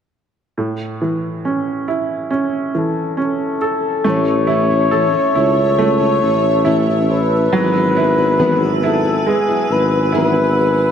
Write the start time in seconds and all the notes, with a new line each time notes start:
0.57 A2
1.01 E3
1.45 C#4
1.88 E4
2.30 C#4
2.75 E3 A4
3.17 C#4
3.24 A4
3.61 A4
4.04 A1 A2 E3 A3 C#4 E4 A4 C#5 E5 A5 E6
4.09 C#5
4.47 A3 C#4 E4 A4
4.69 A3 C#4 E4 A4
4.91 A2 E3 A3 C#4 E4 A4
5.13 A3 C#4 E4 A4
5.35 C#2 A3 C#4 E4 A4
5.56 A3 C#4 E4 A4
5.79 A3 C#5
6.00 A3 C#4 E4 A4
6.21 A1 A3 C#4 E4 A4
6.65 A2 E3 A3 C#4 E4 A4
6.87 A3 C#4 E4 A4
7.09 A3 C#4 E4 A4 B4
7.52 G#1 G#2 E3 F#3 B3 E4 G#4 B4 F#5 G#5
7.95 F#3 B3 E4 G#4
8.17 F#3 B3 E4 G#4
8.38 G#2 E3 F#3 B3 E4 G#4
8.60 F#3 B3 E4 G#4
8.82 F#3 B3 E4 G#4
8.86 A4
9.04 F#3 B3 E4 G#4
9.26 G#3 G#4
9.48 F#3 B3 E4 G#4
9.70 G#1 F#3 B3 E4 G#4 B4
10.12 G#2 E3 F#3 B3 E4 G#4
10.16 B4
10.34 B3 G#4
10.56 F#3 B3 E4 G#4